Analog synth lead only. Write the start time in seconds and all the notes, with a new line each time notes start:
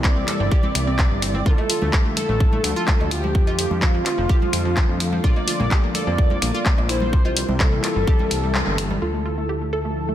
0.04 D5
1.46 A4
2.17 A4
3.11 G4
3.82 F4
5.24 D5
5.95 D5
6.89 C5
7.60 A4
9.02 A4
9.73 A4